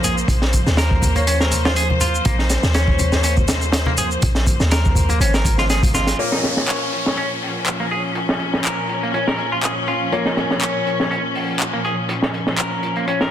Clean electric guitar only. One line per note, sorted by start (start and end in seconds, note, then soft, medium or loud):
0.04 0.15 G#4 medium
0.78 1.15 A#4 medium
1.16 1.26 A#3 medium
1.27 1.38 C#4 loud
1.41 1.64 A#4 medium
1.65 1.71 F4 loud
1.76 1.87 G#4 medium
2.01 2.24 F4 medium
2.26 2.36 A#3 medium
2.39 2.44 D#4 medium
2.75 3.23 C#4 medium
3.24 3.35 C#4 medium
3.87 3.92 A#3 medium
3.98 4.09 G#4 medium
4.72 5.08 A#4 medium
5.10 5.20 A#3 medium
5.21 5.32 C#4 loud
5.34 5.57 A#4 medium
5.59 5.64 F4 loud
5.70 5.81 G#4 medium
5.95 6.18 F4 medium
6.19 6.30 A#3 medium
6.32 6.38 D#4 medium
6.68 7.16 C#4 medium
7.17 7.28 C#4 medium
7.80 7.85 A#3 medium
7.91 8.02 G#4 medium
8.65 9.02 A#4 medium
9.03 9.13 A#3 medium
9.14 9.25 C#4 medium
9.28 9.51 A#4 medium
9.52 9.58 F4 medium
9.63 9.74 G#4 medium
9.88 10.11 F4 medium
10.12 10.23 A#3 medium
10.26 10.31 D#4 medium
10.62 11.10 C#4 medium
11.11 11.22 C#4 medium
11.73 11.79 A#3 medium
11.85 11.95 G#4 medium
12.58 12.95 A#4 medium
12.97 13.06 A#3 medium
13.08 13.18 C#4 medium
13.21 13.31 A#4 medium